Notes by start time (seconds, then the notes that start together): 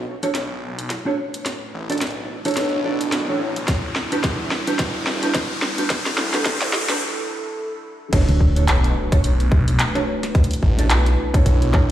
Already playing: A3 D4 F#4 B4, riser
0.23 D4 F#4 A4 C#5, closed hi-hat
0.35 B1, snare, closed hi-hat
0.79 closed hi-hat
0.90 snare, closed hi-hat
1.06 D4 F#4 A4 C#5
1.34 closed hi-hat
1.46 E4, snare, closed hi-hat
1.74 A1
1.90 D4 F#4 A4 D5, closed hi-hat
1.92 closed hi-hat
1.98 snare, closed hi-hat
2.01 B1, closed hi-hat
2.11 closed hi-hat
2.45 D4 F#4 A4 C#5, closed hi-hat
2.48 closed hi-hat
2.51 closed hi-hat
2.54 snare, closed hi-hat
2.57 B1, closed hi-hat
2.61 closed hi-hat
2.69 closed hi-hat
2.85 D4 F#4 A4 D5
3.01 closed hi-hat
3.12 B1, snare, closed hi-hat
3.28 A1 D4 F#4 A4 C#5
3.56 B1, closed hi-hat
3.68 E1 G3, kick, snare, closed hi-hat
3.84 G1
3.96 snare
4.12 D4 F#4 G4 B4, closed hi-hat
4.24 E2, kick, snare, closed hi-hat
4.51 snare
4.67 D4 F#4 G4 B4, closed hi-hat
4.79 E1, kick, snare, closed hi-hat
5.07 snare
5.23 D4 F#4 G4 B4, closed hi-hat
5.34 kick, snare, closed hi-hat
5.62 snare
5.78 D4 F#4 G4 B4, closed hi-hat
5.90 A4, kick, snare, closed hi-hat
6.06 snare, closed hi-hat
6.18 D2, snare
6.34 D4 F#4 G4 B4, snare, closed hi-hat
6.45 E2, kick, snare, closed hi-hat
6.62 snare, closed hi-hat
6.73 snare
6.89 D4 F#4 G4 B4, snare, closed hi-hat
8.13 B1 A3 D4 F#4 A4 B4 C#5, kick, closed hi-hat, crash, impact
8.29 D2, closed hi-hat
8.40 kick
8.56 D4 F#4 A4 C#5, closed hi-hat
8.68 B1, clap, closed hi-hat
8.84 closed hi-hat
9.12 D4 F#4 A4 C#5, kick, closed hi-hat
9.24 B1, closed hi-hat
9.40 closed hi-hat
9.52 kick
9.68 closed hi-hat
9.79 clap, closed hi-hat
9.95 D4 F#4 A4 C#5, snare, closed hi-hat
10.23 snare, closed hi-hat
10.35 E4, kick, closed hi-hat
10.44 closed hi-hat
10.51 closed hi-hat
10.53 closed hi-hat
10.63 A1, kick
10.79 D4 F#4 A4 D5, closed hi-hat
10.90 B1, clap, closed hi-hat
11.06 closed hi-hat
11.34 D4 F#4 A4 C#5, kick, closed hi-hat
11.46 B1, kick, closed hi-hat
11.62 closed hi-hat
11.74 D4 F#4 A4 C#5, kick, clap